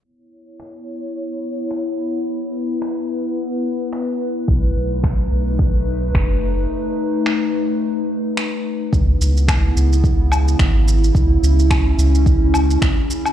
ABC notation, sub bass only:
X:1
M:4/4
L:1/8
Q:"Swing 16ths" 1/4=108
K:C#m
V:1 name="Sub bass" clef=bass
z8 | z8 | B,,, B,,,2 B,,,3 F,,,2 | z8 |
C,, C,,2 C,,3 G,,,2 | C,, C,,2 C,,3 z2 |]